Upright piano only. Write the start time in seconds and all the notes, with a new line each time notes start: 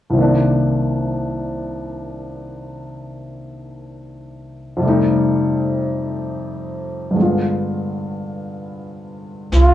0.10 C2 C3
0.15 D#3 A#3
0.21 D4
4.77 F2 C3
4.83 G3 A3
4.89 D#4
7.11 G2 D3
7.16 G#3 B3
7.22 F4